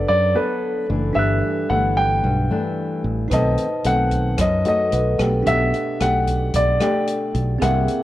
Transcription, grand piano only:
0.09 0.36 D5 medium
0.36 0.86 B4 medium
1.15 1.71 E5 medium
1.70 1.97 F#5 medium
1.97 3.00 G5 medium
3.33 3.87 D#5 medium
3.87 4.41 F#5 medium
4.41 4.65 D#5 medium
4.68 5.17 D#5 medium
5.47 6.02 E5 medium
6.02 6.56 F#5 medium
6.56 6.80 D5 medium
6.81 7.31 D5 medium
7.62 8.03 F#5 medium

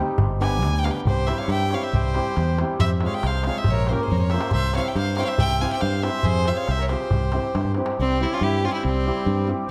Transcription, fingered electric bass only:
0.19 0.63 G1 medium
0.63 0.89 D2 loud
1.05 1.32 C2 medium
1.48 1.75 G2 medium
1.93 2.19 C2 medium
2.37 2.63 E2 loud
2.80 3.06 F2 medium
3.23 3.49 C2 medium
3.67 3.93 A#1 medium
4.12 4.37 F2 medium
4.54 4.79 C2 medium
4.95 5.22 G2 loud
5.39 5.65 C2 medium
5.82 6.08 G2 loud
6.25 6.51 F2 medium
6.68 6.94 C2 loud
7.12 7.38 C2 medium
7.55 7.81 G2 loud
7.99 8.25 C2 medium
8.41 8.67 G2 loud
8.85 9.10 C2 medium
9.26 9.52 G2 loud

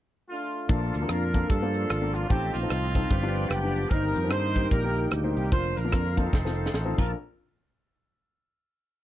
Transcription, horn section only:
0.29 1.06 A3 medium
0.29 0.70 D4 medium
0.29 0.67 F4 medium
0.70 1.09 D4 medium
0.70 1.10 F4 medium
0.70 1.10 A4 medium
1.10 1.49 D4 medium
1.10 1.49 F4 medium
1.10 1.50 A#4 medium
1.49 2.27 D4 medium
1.49 2.12 F4 medium
1.49 2.15 A4 medium
2.14 2.30 F4 medium
2.29 2.54 C4 medium
2.29 3.07 D#4 medium
2.29 2.54 G4 medium
2.54 3.47 C4 medium
2.54 3.46 F4 medium
3.49 3.88 B3 medium
3.49 3.88 D4 medium
3.49 3.90 G4 medium
3.89 4.31 D#4 medium
3.89 4.31 A#4 loud
4.30 4.69 D#4 medium
4.30 4.71 C5 loud
4.71 5.49 D#4 medium
4.71 5.34 G4 medium
4.71 5.04 A#4 medium
5.35 5.51 G4 medium
5.52 5.78 F4 medium
5.52 5.75 C5 loud
5.77 6.30 D4 medium
5.77 6.30 F4 medium
5.77 6.18 A#4 medium
6.18 6.95 C4 medium
6.18 6.95 D#4 medium
6.18 6.98 A4 medium
6.98 7.13 A#4 medium

